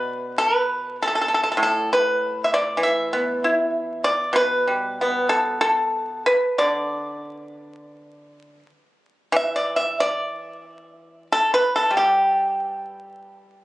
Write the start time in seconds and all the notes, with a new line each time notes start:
Already playing: B2 B4
0.38 A4
0.55 B4
1.02 A4
1.08 A4
1.15 A4
1.21 A4
1.28 A4
1.34 A4
1.43 A4
1.52 A4
1.57 A2
1.63 A4
1.93 B4
2.44 E5
2.54 D5
2.77 E3
2.83 E5
3.13 B3
3.44 E4
4.04 D5
4.33 B2 B4
4.68 G3
5.01 B3
5.29 A4
5.61 A4
6.26 B4
6.58 D3 D5
9.32 E3
9.36 E5
9.56 D5
9.76 E5
10.00 D5
11.32 A4
11.54 B4
11.76 A4
11.91 G3
11.97 G4